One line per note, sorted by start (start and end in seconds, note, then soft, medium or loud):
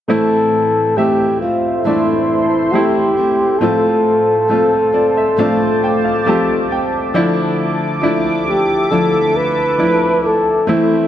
0.08 1.37 A2 soft
0.08 0.97 A2 medium
0.08 0.95 E3 medium
0.08 0.92 A3 medium
0.08 0.97 A3 medium
0.08 0.93 C4 medium
0.08 0.98 C4 medium
0.08 0.93 E4 medium
0.08 0.98 E4 medium
0.08 0.99 A4 medium
0.08 7.11 A4 medium
0.08 3.59 C5 medium
0.08 3.59 E5 medium
0.08 5.35 C6 medium
0.96 1.41 E3 soft
0.96 1.81 A3 medium
0.96 1.41 A3 soft
0.96 1.81 C4 medium
0.96 1.41 C4 soft
0.96 1.42 E4 medium
0.96 1.40 G4 medium
0.96 1.81 E5 medium
1.40 1.84 A3 soft
1.40 1.85 C4 soft
1.40 1.86 F4 medium
1.84 2.73 A2 medium
1.84 2.71 E3 medium
1.84 2.69 A3 medium
1.84 2.73 A3 medium
1.84 2.69 C4 soft
1.84 2.74 C4 medium
1.84 2.70 D4 medium
1.84 2.73 E4 medium
1.84 2.74 E4 medium
2.72 3.17 E3 soft
2.72 3.57 A3 medium
2.72 3.18 A3 soft
2.72 3.58 C4 soft
2.72 3.17 C4 medium
2.72 3.16 E4 soft
2.72 3.58 E4 medium
2.72 3.61 G4 medium
3.17 3.61 A3 soft
3.17 3.61 C4 soft
3.17 3.61 E4 soft
3.59 4.50 A2 medium
3.59 4.90 A2 soft
3.59 4.48 F3 medium
3.59 4.45 A3 medium
3.59 4.48 A3 medium
3.59 4.45 C4 medium
3.59 4.49 C4 medium
3.59 4.46 F4 medium
3.59 4.50 F4 medium
3.59 6.69 A4 medium
3.59 7.11 C5 medium
3.59 10.64 A5 medium
4.48 4.93 F3 soft
4.48 4.93 A3 soft
4.48 5.33 A3 medium
4.48 4.93 C4 medium
4.48 5.34 C4 medium
4.48 4.91 F4 soft
4.48 5.34 F4 medium
4.93 5.37 A3 soft
4.93 5.37 C4 soft
4.93 5.37 F4 soft
4.93 5.14 D5 medium
5.17 5.37 E5 medium
5.37 6.26 A2 medium
5.37 6.24 F3 medium
5.37 6.26 A3 medium
5.37 6.22 A3 medium
5.37 6.26 C4 medium
5.37 6.22 C4 medium
5.37 6.23 D4 medium
5.37 6.27 F4 medium
5.37 5.80 F5 medium
5.37 7.13 D6 medium
5.84 6.03 G5 medium
6.05 6.25 F5 medium
6.25 6.70 F3 medium
6.25 7.10 A3 medium
6.25 6.70 A3 medium
6.25 6.70 C4 medium
6.25 7.11 C4 medium
6.25 6.68 F4 medium
6.25 7.11 G4 medium
6.25 6.68 A5 medium
6.70 7.13 A3 soft
6.70 7.15 C4 soft
6.70 7.14 F4 soft
6.70 7.12 G5 medium
7.14 8.02 D3 medium
7.14 8.43 D3 medium
7.14 7.98 F3 medium
7.14 8.00 F3 medium
7.14 8.03 A3 medium
7.14 7.99 D4 medium
7.14 8.02 D4 medium
7.14 8.04 E4 medium
7.14 7.99 E4 medium
7.14 11.08 A4 medium
7.14 10.64 E5 medium
7.14 10.64 D6 medium
8.02 8.46 F3 medium
8.02 8.86 F3 medium
8.02 8.47 A3 medium
8.02 8.87 D4 medium
8.02 8.46 D4 medium
8.02 8.87 E4 medium
8.02 8.45 E4 medium
8.46 8.91 A3 soft
8.46 8.91 D4 soft
8.46 8.91 E4 soft
8.46 8.93 G4 medium
8.91 9.79 D3 medium
8.91 9.75 F3 medium
8.91 9.78 F3 medium
8.91 9.79 A3 medium
8.91 9.75 D4 soft
8.91 9.80 D4 medium
8.91 9.75 E4 medium
8.91 9.81 E4 medium
8.91 9.38 A4 medium
9.37 10.28 B4 medium
9.78 10.62 F3 medium
9.78 10.23 F3 medium
9.78 10.24 A3 medium
9.78 10.63 D4 medium
9.78 10.22 D4 soft
9.78 10.63 E4 medium
9.78 10.21 E4 medium
10.22 10.67 A3 soft
10.22 10.68 D4 soft
10.22 10.67 E4 soft
10.27 10.69 A4 medium
10.67 11.08 E3 medium
10.67 11.08 E3 soft
10.67 11.08 A3 medium
10.67 11.08 C4 medium
10.67 11.08 E4 medium
10.67 11.08 C5 medium
10.67 11.08 E5 medium
10.67 11.08 C6 medium